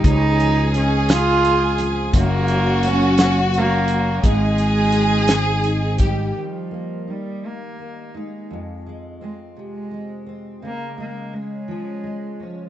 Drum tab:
HH |xxxxxx|xxxxxx|xxxxxx|------|
SD |---o--|---o--|---o--|------|
BD |o-----|o-----|o----o|------|

HH |------|------|
SD |------|------|
BD |------|------|